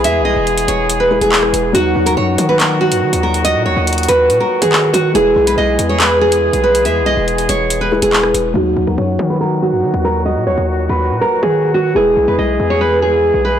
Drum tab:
HH |x-------x-x-x---x-----x-----x---|x-----x-----x---x-----x---x---x-|x-------xxxxx---x-----x-----x---|x-----x-----x---x-----x---x---x-|
CP |------------------------x-------|----------------x---------------|------------------------x-------|----------------x---------------|
SD |--------------------------r-----|--------------------------------|--------------------------------|--------------------------------|

HH |x-------x-x-x---x-----x-----x---|--------------------------------|--------------------------------|--------------------------------|
CP |------------------------x-------|--------------------------------|--------------------------------|--------------------------------|
SD |--------------------------r-----|--------------------------------|--------------------------------|--------------------------------|